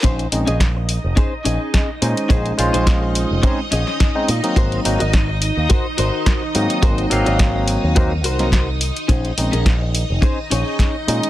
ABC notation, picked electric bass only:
X:1
M:4/4
L:1/16
Q:"Swing 16ths" 1/4=106
K:Bbm
V:1 name="Picked electric bass" clef=bass
B,,, z B,,, B,,,4 F,,, z2 B,,, z3 B,, z | B,,, z B,,, B,,,4 F,,, z2 B,,, z3 B,, z | A,,, z A,,, A,,,4 E,, z2 A,,, z3 A,, z | A,,, z A,,, A,,,4 E,,3 C,,4- C,, z |
B,,, z B,,, B,,,4 F,,, z2 B,,, z3 B,, z |]